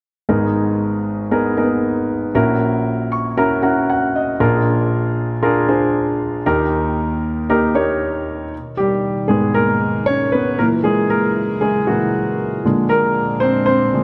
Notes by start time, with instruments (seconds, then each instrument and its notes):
0.29 grand piano G#1 G#2 B3 D#4 G#4 A#4
1.31 grand piano B3 D#4 G#4 A#4
1.57 grand piano A#3 D#4 G#4 A#4
1.63 grand piano B3
2.35 grand piano A#1 A#2 C#4 E4 F#4 A#4
3.12 grand piano C#6
3.37 grand piano C#4 E4 F#4 A#4 A#5
3.62 grand piano C#4 E4 F#4 A#4 F#5
3.90 grand piano F#5
4.16 grand piano D#5
4.40 grand piano A#1 A#2 D4 F4 G#4 A#4
5.43 grand piano D4 F4 G#4 A#4
5.68 grand piano D4 F4 G#4 C5
6.46 grand piano D#2 D#3 A#3 D#4 G4 A#4
7.49 grand piano A#3 D#4 G4 A#4
7.75 grand piano A#3 D#4 G4 C#5
8.53 analog synth pad B2 D#3 D#4 A#4
8.77 grand piano G3 G4
9.28 grand piano G#2 D#3 G#3 B3 G#4
9.54 grand piano A#3 A#4
10.06 grand piano C#4 C#5
10.32 grand piano B3 B4
10.58 grand piano A#2 E3 A#3 A#4, analog synth pad C#3 F#3 E4
10.84 grand piano G#3 G#4
11.10 grand piano A#3 A#4
11.61 grand piano G#3 G#4
11.87 grand piano A#2 E3 F#3 A#3 F#4
12.64 grand piano A#2 D3 G#3, analog synth pad A#2 F3 G#3 D4
12.89 grand piano A#3 A#4
13.40 grand piano C4 C5
13.66 grand piano C4 C5
13.93 grand piano A#2 D3 G#3